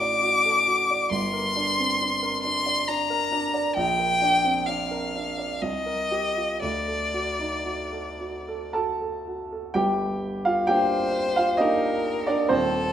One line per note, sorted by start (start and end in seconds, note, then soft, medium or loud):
0.00 1.07 A1 medium
0.00 1.08 A2 medium
0.00 1.15 D#4 soft
0.00 0.23 F#4 medium
0.00 0.45 A4 medium
0.00 0.37 D5 medium
0.00 1.10 D6 loud
0.23 0.59 F#4 medium
0.45 0.81 A4 medium
0.67 1.03 F#4 medium
0.90 1.12 D5 medium
1.11 3.71 G1 medium
1.11 3.72 G2 medium
1.11 2.41 C6 loud
1.33 1.69 A#4 medium
1.56 1.91 D4 medium
1.78 2.00 C4 soft
2.01 2.36 D4 medium
2.23 2.57 A#4 medium
2.44 2.79 D4 medium
2.44 2.90 C6 loud
2.66 3.01 D5 medium
2.88 3.23 D4 medium
2.88 3.76 A#5 medium
3.10 3.45 A#4 medium
3.32 3.67 D4 medium
3.54 3.76 D5 medium
3.76 5.59 A#1 medium
3.76 4.68 G5 loud
3.99 4.36 A#4 soft
4.21 4.59 D4 medium
4.44 4.68 C4 medium
4.67 5.05 D4 medium
4.67 5.64 F5 medium
4.91 5.29 A#4 medium
5.15 5.53 D4 soft
5.38 5.63 D5 medium
5.62 6.60 C2 medium
5.62 6.62 D#5 loud
5.86 6.27 A#4 medium
6.11 6.52 G4 medium
6.36 6.62 F4 soft
6.62 9.71 D2 medium
6.62 8.71 D5 medium
6.87 7.29 A4 soft
7.13 7.55 F#4 medium
7.39 7.66 D#4 soft
7.65 8.09 F#4 soft
7.92 8.37 A4 soft
8.20 8.64 F#4 soft
8.48 8.73 A4 medium
8.73 9.17 F#4 soft
8.73 9.00 A4 medium
8.73 9.75 A5 medium
9.01 9.42 A4 medium
9.27 9.66 F#4 soft
9.52 9.76 A4 medium
9.74 10.65 G1 medium
9.74 10.66 G2 medium
9.74 10.41 G4 medium
9.74 10.45 G5 loud
10.45 10.67 F4 medium
10.45 10.68 F5 loud
10.67 11.55 A#3 soft
10.67 11.55 D4 medium
10.67 11.32 G4 medium
10.67 11.62 C5 medium
10.67 11.35 G5 loud
11.36 11.58 F4 medium
11.36 11.59 F5 loud
11.57 12.47 A#3 soft
11.57 12.26 D4 medium
11.57 12.24 D#4 medium
11.57 12.47 G4 medium
11.57 12.51 A#4 medium
11.57 12.27 D#5 loud
12.27 12.49 D4 medium
12.27 12.50 D5 loud
12.49 12.93 D#1 medium
12.49 12.93 D#2 medium
12.49 12.93 C4 medium
12.49 12.93 A4 medium
12.49 12.93 C5 loud